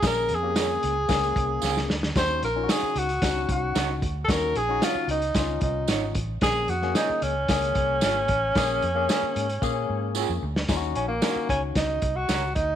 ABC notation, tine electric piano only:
X:1
M:4/4
L:1/16
Q:1/4=113
K:Ebdor
V:1 name="Tine electric piano"
[B,DA]2 z [B,D=GA]4 z [B,DA]6 z2 | [DEG]2 z [DEFG]4 z [DEG]6 z2 | [DEG]2 z [DEG]4 z [DEF]6 z2 | [B,DA]2 z [B,DA]4 z [B,DA]6 z2 |
[B,DA]2 z [B,DA]4 z [B,DA]6 z2 | [DEFG]3 z [DEFG]6 z6 |]